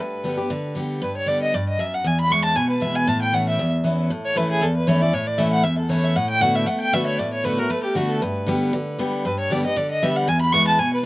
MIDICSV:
0, 0, Header, 1, 3, 480
1, 0, Start_track
1, 0, Tempo, 257180
1, 1902, Time_signature, 4, 2, 24, 8
1, 20637, End_track
2, 0, Start_track
2, 0, Title_t, "Fiddle"
2, 0, Program_c, 0, 110
2, 0, Note_on_c, 0, 71, 70
2, 1431, Note_off_c, 0, 71, 0
2, 1908, Note_on_c, 0, 71, 76
2, 2148, Note_off_c, 0, 71, 0
2, 2181, Note_on_c, 0, 73, 86
2, 2388, Note_on_c, 0, 74, 89
2, 2416, Note_off_c, 0, 73, 0
2, 2641, Note_off_c, 0, 74, 0
2, 2652, Note_on_c, 0, 75, 96
2, 2878, Note_on_c, 0, 74, 79
2, 2906, Note_off_c, 0, 75, 0
2, 3131, Note_off_c, 0, 74, 0
2, 3151, Note_on_c, 0, 75, 95
2, 3368, Note_on_c, 0, 76, 87
2, 3396, Note_off_c, 0, 75, 0
2, 3627, Note_on_c, 0, 78, 85
2, 3655, Note_off_c, 0, 76, 0
2, 3860, Note_on_c, 0, 80, 85
2, 3888, Note_off_c, 0, 78, 0
2, 4102, Note_off_c, 0, 80, 0
2, 4113, Note_on_c, 0, 83, 109
2, 4330, Note_on_c, 0, 85, 117
2, 4358, Note_off_c, 0, 83, 0
2, 4551, Note_off_c, 0, 85, 0
2, 4562, Note_on_c, 0, 81, 97
2, 4776, Note_on_c, 0, 80, 88
2, 4804, Note_off_c, 0, 81, 0
2, 5022, Note_off_c, 0, 80, 0
2, 5033, Note_on_c, 0, 71, 76
2, 5266, Note_on_c, 0, 76, 85
2, 5294, Note_off_c, 0, 71, 0
2, 5514, Note_on_c, 0, 80, 100
2, 5542, Note_off_c, 0, 76, 0
2, 5746, Note_on_c, 0, 81, 97
2, 5774, Note_off_c, 0, 80, 0
2, 5990, Note_off_c, 0, 81, 0
2, 6001, Note_on_c, 0, 79, 96
2, 6228, Note_on_c, 0, 78, 87
2, 6256, Note_off_c, 0, 79, 0
2, 6485, Note_off_c, 0, 78, 0
2, 6503, Note_on_c, 0, 76, 89
2, 6939, Note_off_c, 0, 76, 0
2, 7937, Note_on_c, 0, 73, 94
2, 8154, Note_on_c, 0, 71, 84
2, 8182, Note_off_c, 0, 73, 0
2, 8399, Note_off_c, 0, 71, 0
2, 8411, Note_on_c, 0, 68, 100
2, 8631, Note_on_c, 0, 69, 81
2, 8659, Note_off_c, 0, 68, 0
2, 8881, Note_off_c, 0, 69, 0
2, 8892, Note_on_c, 0, 71, 86
2, 9103, Note_on_c, 0, 73, 84
2, 9131, Note_off_c, 0, 71, 0
2, 9367, Note_on_c, 0, 74, 93
2, 9395, Note_off_c, 0, 73, 0
2, 9588, Note_on_c, 0, 73, 77
2, 9616, Note_off_c, 0, 74, 0
2, 9836, Note_on_c, 0, 74, 92
2, 9864, Note_off_c, 0, 73, 0
2, 10042, Note_on_c, 0, 76, 86
2, 10070, Note_off_c, 0, 74, 0
2, 10301, Note_off_c, 0, 76, 0
2, 10312, Note_on_c, 0, 78, 96
2, 10519, Note_on_c, 0, 76, 78
2, 10547, Note_off_c, 0, 78, 0
2, 10777, Note_off_c, 0, 76, 0
2, 10788, Note_on_c, 0, 69, 53
2, 11008, Note_on_c, 0, 73, 80
2, 11036, Note_off_c, 0, 69, 0
2, 11277, Note_on_c, 0, 76, 93
2, 11305, Note_off_c, 0, 73, 0
2, 11495, Note_on_c, 0, 78, 89
2, 11523, Note_off_c, 0, 76, 0
2, 11740, Note_off_c, 0, 78, 0
2, 11751, Note_on_c, 0, 79, 113
2, 11968, Note_on_c, 0, 78, 99
2, 11996, Note_off_c, 0, 79, 0
2, 12230, Note_on_c, 0, 76, 95
2, 12258, Note_off_c, 0, 78, 0
2, 12439, Note_on_c, 0, 78, 84
2, 12467, Note_off_c, 0, 76, 0
2, 12686, Note_off_c, 0, 78, 0
2, 12698, Note_on_c, 0, 79, 107
2, 12942, Note_on_c, 0, 76, 91
2, 12970, Note_off_c, 0, 79, 0
2, 13175, Note_off_c, 0, 76, 0
2, 13186, Note_on_c, 0, 73, 82
2, 13412, Note_on_c, 0, 74, 81
2, 13440, Note_off_c, 0, 73, 0
2, 13675, Note_off_c, 0, 74, 0
2, 13682, Note_on_c, 0, 73, 86
2, 13900, Note_on_c, 0, 71, 87
2, 13928, Note_off_c, 0, 73, 0
2, 14167, Note_on_c, 0, 70, 88
2, 14195, Note_off_c, 0, 71, 0
2, 14372, Note_on_c, 0, 71, 98
2, 14400, Note_off_c, 0, 70, 0
2, 14605, Note_off_c, 0, 71, 0
2, 14616, Note_on_c, 0, 67, 83
2, 14848, Note_on_c, 0, 66, 77
2, 14876, Note_off_c, 0, 67, 0
2, 15104, Note_on_c, 0, 69, 79
2, 15132, Note_off_c, 0, 66, 0
2, 15335, Note_on_c, 0, 71, 71
2, 15363, Note_off_c, 0, 69, 0
2, 16776, Note_off_c, 0, 71, 0
2, 17274, Note_on_c, 0, 71, 79
2, 17509, Note_off_c, 0, 71, 0
2, 17533, Note_on_c, 0, 73, 90
2, 17765, Note_on_c, 0, 74, 81
2, 17793, Note_off_c, 0, 73, 0
2, 17993, Note_off_c, 0, 74, 0
2, 18004, Note_on_c, 0, 75, 94
2, 18234, Note_on_c, 0, 74, 80
2, 18262, Note_off_c, 0, 75, 0
2, 18481, Note_off_c, 0, 74, 0
2, 18492, Note_on_c, 0, 75, 91
2, 18719, Note_on_c, 0, 76, 89
2, 18747, Note_off_c, 0, 75, 0
2, 18967, Note_on_c, 0, 78, 88
2, 18995, Note_off_c, 0, 76, 0
2, 19185, Note_on_c, 0, 80, 99
2, 19213, Note_off_c, 0, 78, 0
2, 19422, Note_off_c, 0, 80, 0
2, 19433, Note_on_c, 0, 83, 102
2, 19640, Note_on_c, 0, 85, 118
2, 19668, Note_off_c, 0, 83, 0
2, 19904, Note_off_c, 0, 85, 0
2, 19915, Note_on_c, 0, 81, 88
2, 20138, Note_on_c, 0, 80, 91
2, 20166, Note_off_c, 0, 81, 0
2, 20401, Note_off_c, 0, 80, 0
2, 20414, Note_on_c, 0, 71, 82
2, 20637, Note_off_c, 0, 71, 0
2, 20637, End_track
3, 0, Start_track
3, 0, Title_t, "Steel-string acoustic guitar"
3, 0, Program_c, 1, 25
3, 0, Note_on_c, 1, 43, 87
3, 446, Note_on_c, 1, 50, 55
3, 460, Note_on_c, 1, 55, 62
3, 470, Note_on_c, 1, 59, 66
3, 476, Note_on_c, 1, 67, 63
3, 676, Note_off_c, 1, 67, 0
3, 699, Note_on_c, 1, 67, 58
3, 706, Note_off_c, 1, 50, 0
3, 713, Note_off_c, 1, 55, 0
3, 718, Note_off_c, 1, 59, 0
3, 737, Note_on_c, 1, 59, 40
3, 899, Note_off_c, 1, 43, 0
3, 921, Note_off_c, 1, 67, 0
3, 935, Note_on_c, 1, 50, 92
3, 941, Note_off_c, 1, 59, 0
3, 1380, Note_off_c, 1, 50, 0
3, 1402, Note_on_c, 1, 50, 63
3, 1420, Note_on_c, 1, 55, 50
3, 1430, Note_on_c, 1, 59, 65
3, 1439, Note_on_c, 1, 67, 64
3, 1870, Note_off_c, 1, 50, 0
3, 1879, Note_off_c, 1, 55, 0
3, 1885, Note_off_c, 1, 59, 0
3, 1889, Note_off_c, 1, 67, 0
3, 1898, Note_on_c, 1, 43, 78
3, 2358, Note_on_c, 1, 50, 69
3, 2373, Note_on_c, 1, 55, 54
3, 2388, Note_on_c, 1, 59, 60
3, 2400, Note_on_c, 1, 67, 63
3, 2816, Note_off_c, 1, 43, 0
3, 2828, Note_off_c, 1, 50, 0
3, 2836, Note_off_c, 1, 55, 0
3, 2843, Note_off_c, 1, 59, 0
3, 2849, Note_off_c, 1, 67, 0
3, 2872, Note_on_c, 1, 43, 91
3, 3325, Note_off_c, 1, 43, 0
3, 3344, Note_on_c, 1, 42, 85
3, 3801, Note_off_c, 1, 42, 0
3, 3815, Note_on_c, 1, 40, 84
3, 4293, Note_on_c, 1, 52, 63
3, 4302, Note_on_c, 1, 56, 64
3, 4320, Note_on_c, 1, 59, 63
3, 4324, Note_on_c, 1, 64, 71
3, 4734, Note_off_c, 1, 40, 0
3, 4755, Note_off_c, 1, 52, 0
3, 4760, Note_off_c, 1, 56, 0
3, 4768, Note_off_c, 1, 59, 0
3, 4771, Note_off_c, 1, 64, 0
3, 4777, Note_on_c, 1, 47, 97
3, 5228, Note_on_c, 1, 52, 57
3, 5246, Note_on_c, 1, 56, 65
3, 5264, Note_on_c, 1, 59, 64
3, 5267, Note_on_c, 1, 64, 58
3, 5695, Note_off_c, 1, 47, 0
3, 5702, Note_off_c, 1, 52, 0
3, 5711, Note_off_c, 1, 56, 0
3, 5720, Note_off_c, 1, 59, 0
3, 5722, Note_off_c, 1, 64, 0
3, 5733, Note_on_c, 1, 45, 94
3, 6209, Note_on_c, 1, 52, 66
3, 6222, Note_on_c, 1, 59, 61
3, 6229, Note_on_c, 1, 61, 67
3, 6240, Note_on_c, 1, 64, 59
3, 6652, Note_off_c, 1, 45, 0
3, 6672, Note_off_c, 1, 52, 0
3, 6679, Note_off_c, 1, 59, 0
3, 6682, Note_off_c, 1, 61, 0
3, 6688, Note_off_c, 1, 64, 0
3, 6702, Note_on_c, 1, 40, 95
3, 7163, Note_on_c, 1, 52, 64
3, 7180, Note_on_c, 1, 59, 58
3, 7190, Note_on_c, 1, 61, 63
3, 7195, Note_on_c, 1, 64, 64
3, 7616, Note_off_c, 1, 40, 0
3, 7629, Note_off_c, 1, 52, 0
3, 7637, Note_off_c, 1, 59, 0
3, 7643, Note_off_c, 1, 61, 0
3, 7645, Note_off_c, 1, 64, 0
3, 7659, Note_on_c, 1, 45, 92
3, 8128, Note_on_c, 1, 52, 79
3, 8138, Note_on_c, 1, 57, 93
3, 8149, Note_on_c, 1, 61, 93
3, 8159, Note_on_c, 1, 64, 82
3, 8574, Note_off_c, 1, 45, 0
3, 8591, Note_off_c, 1, 52, 0
3, 8596, Note_off_c, 1, 57, 0
3, 8601, Note_off_c, 1, 61, 0
3, 8606, Note_off_c, 1, 64, 0
3, 8606, Note_on_c, 1, 40, 91
3, 9090, Note_on_c, 1, 52, 78
3, 9107, Note_on_c, 1, 57, 87
3, 9115, Note_on_c, 1, 61, 86
3, 9127, Note_on_c, 1, 64, 89
3, 9338, Note_off_c, 1, 64, 0
3, 9345, Note_off_c, 1, 52, 0
3, 9353, Note_off_c, 1, 57, 0
3, 9357, Note_off_c, 1, 61, 0
3, 9360, Note_on_c, 1, 64, 63
3, 9399, Note_on_c, 1, 61, 51
3, 9528, Note_off_c, 1, 40, 0
3, 9569, Note_off_c, 1, 64, 0
3, 9578, Note_on_c, 1, 45, 91
3, 9588, Note_off_c, 1, 61, 0
3, 10042, Note_on_c, 1, 52, 81
3, 10052, Note_on_c, 1, 57, 99
3, 10067, Note_on_c, 1, 61, 94
3, 10078, Note_on_c, 1, 64, 93
3, 10493, Note_off_c, 1, 45, 0
3, 10507, Note_off_c, 1, 52, 0
3, 10512, Note_off_c, 1, 57, 0
3, 10519, Note_off_c, 1, 61, 0
3, 10519, Note_on_c, 1, 40, 89
3, 10525, Note_off_c, 1, 64, 0
3, 10994, Note_on_c, 1, 52, 79
3, 11006, Note_on_c, 1, 57, 79
3, 11019, Note_on_c, 1, 61, 85
3, 11035, Note_on_c, 1, 64, 91
3, 11443, Note_off_c, 1, 40, 0
3, 11463, Note_off_c, 1, 52, 0
3, 11469, Note_off_c, 1, 57, 0
3, 11475, Note_off_c, 1, 61, 0
3, 11484, Note_off_c, 1, 64, 0
3, 11497, Note_on_c, 1, 45, 95
3, 11955, Note_on_c, 1, 50, 91
3, 11971, Note_on_c, 1, 57, 83
3, 11979, Note_on_c, 1, 59, 97
3, 11993, Note_on_c, 1, 66, 100
3, 12412, Note_off_c, 1, 45, 0
3, 12423, Note_off_c, 1, 50, 0
3, 12431, Note_off_c, 1, 57, 0
3, 12435, Note_off_c, 1, 59, 0
3, 12442, Note_off_c, 1, 66, 0
3, 12450, Note_on_c, 1, 57, 96
3, 12920, Note_off_c, 1, 57, 0
3, 12932, Note_on_c, 1, 50, 86
3, 12942, Note_on_c, 1, 57, 91
3, 12951, Note_on_c, 1, 59, 96
3, 12964, Note_on_c, 1, 66, 85
3, 13392, Note_off_c, 1, 50, 0
3, 13396, Note_off_c, 1, 57, 0
3, 13401, Note_off_c, 1, 59, 0
3, 13407, Note_off_c, 1, 66, 0
3, 13425, Note_on_c, 1, 45, 86
3, 13882, Note_on_c, 1, 50, 90
3, 13899, Note_on_c, 1, 57, 90
3, 13904, Note_on_c, 1, 59, 104
3, 13923, Note_on_c, 1, 66, 101
3, 14120, Note_off_c, 1, 66, 0
3, 14139, Note_off_c, 1, 50, 0
3, 14142, Note_on_c, 1, 66, 58
3, 14148, Note_off_c, 1, 57, 0
3, 14151, Note_off_c, 1, 59, 0
3, 14182, Note_on_c, 1, 59, 46
3, 14336, Note_off_c, 1, 45, 0
3, 14359, Note_off_c, 1, 66, 0
3, 14372, Note_on_c, 1, 57, 101
3, 14379, Note_off_c, 1, 59, 0
3, 14832, Note_off_c, 1, 57, 0
3, 14838, Note_on_c, 1, 50, 78
3, 14854, Note_on_c, 1, 57, 86
3, 14864, Note_on_c, 1, 59, 78
3, 14876, Note_on_c, 1, 66, 98
3, 15305, Note_off_c, 1, 50, 0
3, 15313, Note_off_c, 1, 57, 0
3, 15318, Note_off_c, 1, 59, 0
3, 15324, Note_off_c, 1, 66, 0
3, 15343, Note_on_c, 1, 43, 88
3, 15800, Note_on_c, 1, 50, 87
3, 15818, Note_on_c, 1, 55, 88
3, 15826, Note_on_c, 1, 59, 104
3, 15842, Note_on_c, 1, 67, 101
3, 16256, Note_off_c, 1, 43, 0
3, 16266, Note_off_c, 1, 50, 0
3, 16275, Note_off_c, 1, 55, 0
3, 16279, Note_off_c, 1, 59, 0
3, 16287, Note_off_c, 1, 67, 0
3, 16293, Note_on_c, 1, 50, 96
3, 16748, Note_off_c, 1, 50, 0
3, 16771, Note_on_c, 1, 50, 75
3, 16782, Note_on_c, 1, 55, 98
3, 16787, Note_on_c, 1, 59, 92
3, 16798, Note_on_c, 1, 67, 92
3, 17232, Note_off_c, 1, 50, 0
3, 17238, Note_off_c, 1, 55, 0
3, 17240, Note_off_c, 1, 59, 0
3, 17246, Note_off_c, 1, 67, 0
3, 17262, Note_on_c, 1, 43, 89
3, 17734, Note_on_c, 1, 50, 83
3, 17754, Note_on_c, 1, 55, 82
3, 17765, Note_on_c, 1, 59, 90
3, 17769, Note_on_c, 1, 67, 99
3, 17980, Note_off_c, 1, 67, 0
3, 17987, Note_off_c, 1, 50, 0
3, 17997, Note_off_c, 1, 55, 0
3, 18002, Note_off_c, 1, 59, 0
3, 18003, Note_on_c, 1, 67, 57
3, 18044, Note_on_c, 1, 59, 44
3, 18177, Note_off_c, 1, 43, 0
3, 18211, Note_off_c, 1, 67, 0
3, 18223, Note_on_c, 1, 50, 95
3, 18231, Note_off_c, 1, 59, 0
3, 18684, Note_off_c, 1, 50, 0
3, 18706, Note_on_c, 1, 50, 80
3, 18715, Note_on_c, 1, 55, 93
3, 18727, Note_on_c, 1, 59, 87
3, 18744, Note_on_c, 1, 67, 94
3, 19161, Note_off_c, 1, 50, 0
3, 19165, Note_off_c, 1, 55, 0
3, 19172, Note_off_c, 1, 59, 0
3, 19179, Note_on_c, 1, 40, 94
3, 19180, Note_off_c, 1, 67, 0
3, 19652, Note_on_c, 1, 52, 83
3, 19663, Note_on_c, 1, 56, 82
3, 19670, Note_on_c, 1, 59, 97
3, 19686, Note_on_c, 1, 64, 91
3, 20097, Note_off_c, 1, 40, 0
3, 20115, Note_off_c, 1, 52, 0
3, 20120, Note_off_c, 1, 56, 0
3, 20123, Note_off_c, 1, 59, 0
3, 20132, Note_off_c, 1, 64, 0
3, 20135, Note_on_c, 1, 47, 92
3, 20637, Note_off_c, 1, 47, 0
3, 20637, End_track
0, 0, End_of_file